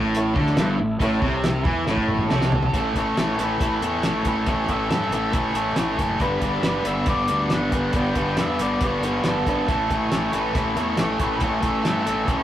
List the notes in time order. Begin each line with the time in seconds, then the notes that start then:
Already playing: A1 A2
0.15 E4 A4 C#5, closed hi-hat
0.35 D2 D3, kick
0.47 snare
0.56 G1 G2 E4 A4 E5, snare, closed hi-hat
0.79 A1 A2
1.00 A1 A2 E4 A4 C#5, kick, closed hi-hat
1.22 C2 C3, kick
1.44 E4 A4 E5, snare, closed hi-hat
1.65 E2 E3, kick
1.86 A1 A2 E4 A4 C#5, snare
1.97 kick
2.08 mid tom
2.18 mid tom
2.29 C2 C3 E4 A4, snare
2.33 C#5
2.41 snare
2.52 floor tom
2.63 floor tom
2.73 A1 A2 E3 A3 C#4 E4 A4, kick, closed hi-hat
2.95 A1 A2 E3 A3 C#4 E4 A4 C#5, kick, closed hi-hat
3.16 A1 A2 E3 A3 C#4 E4 A4, snare, closed hi-hat
3.38 A1 A2 E3 A3 C#4 E4 A4 B4, closed hi-hat
3.60 A1 A2 E3 A3 C#4 E4 A4, kick, closed hi-hat
3.81 E2 A2 E3 A3 C#4 E4 A4 C#5, closed hi-hat
4.03 A1 A2 E3 A3 C#4 E4 A4, snare, closed hi-hat
4.25 A1 A2 E3 A3 C#4 E4 A4 B4, kick, closed hi-hat
4.46 A1 A2 E3 A3 C#4 E4 A4 C#5, kick, closed hi-hat
4.69 A1 A2 E3 A3 C#4 E4 A4 E5, kick, closed hi-hat
4.89 G2 A2 E3 A3 C#4 E4 A4, snare, closed hi-hat
4.94 E5
5.09 A1 A2 E3 A3 C#4, closed hi-hat
5.13 E4 A4
5.32 A1 A2 E3 A3 C#4 E4 A4, kick, closed hi-hat
5.38 C#5
5.53 A1 A2 E3 A3 C#4 E4 A4, closed hi-hat
5.75 A1 A2 E3 A3 C#4 E4 A4, snare, closed hi-hat
5.98 F#1 A2 E3 A3 C#4 E4 A4, kick, closed hi-hat
6.19 G1 G2 D3 G3 B3 D4 B4, kick, closed hi-hat
6.41 G1 G2 D3 G3 B3 D4 B4, kick, closed hi-hat
6.45 B4
6.61 G1 G2 D3 G3 B3 D4 B4, snare, closed hi-hat
6.67 B4
6.84 G1 G2 D3 G3 B3 D4 B4 E5, closed hi-hat
7.05 G1 G2 D3 G3 B3 D4 B4, kick, closed hi-hat
7.09 D5
7.28 D2 G2 D3 G3 B3 D4 B4, closed hi-hat
7.50 G1 G2 D3 G3 B3 D4 B4 F#5, snare, closed hi-hat
7.70 G1 G2 D3 G3 B3 D4, kick, closed hi-hat
7.74 B4
7.93 G1 G2 D3 G3 B3 D4 B4 G5, kick, closed hi-hat
8.14 G1 G2 D3 G3 B3 D4 B4, kick, closed hi-hat
8.37 E2 G2 D3 G3 B3 D4 B4 E5, snare, closed hi-hat
8.59 G1 G2 D3 G3 B3 D4 B4 D5, closed hi-hat
8.81 G1 G2 D3 G3 B3 D4 B4, kick, closed hi-hat
8.86 C#5
9.01 G1 G2 D3 G3 D4, closed hi-hat
9.05 B3 B4
9.24 G1 G2 D3 G3 B3 D4 B4, snare, closed hi-hat
9.29 A4
9.46 G#1 G2 D3 G3 B3 D4 B4, kick, closed hi-hat
9.67 A1 A2 E3 A3 C#4 E4 A4, kick, closed hi-hat
9.72 A4
9.89 A1 A2 E3 A3 C#4 E4 A4, kick, closed hi-hat
9.93 C#5
10.10 A1 A2 E3 A3 C#4 E4 A4, snare, closed hi-hat
10.32 A1 A2 E3 A3 C#4 E4 A4, closed hi-hat
10.38 B4
10.52 A1 A2 E3 A3 C#4 E4 A4, kick, closed hi-hat
10.75 E2 A2 E3 A3 C#4 E4 A4, closed hi-hat
10.80 C#5
10.97 A1 A2 E3 A3 C#4 E4 A4, snare, closed hi-hat
11.18 A1 A2 E3 A3 C#4 E4 A4, kick, closed hi-hat
11.23 B4
11.37 A2 A3 C#4 B4, closed hi-hat
11.41 A1 E3 E4 A4 C#5, kick
11.61 A1 A2 E3 A3 C#4 E4 A4, kick, closed hi-hat
11.68 E5
11.83 G2 A2 E3 A3 C#4 E4 A4, snare, closed hi-hat
11.88 E5
12.05 A1 A2 E3 A3 C#4 E4 A4, snare, closed hi-hat
12.26 A1 A2 E3 A3 C#4 E4 A4, kick, closed hi-hat
12.30 C#5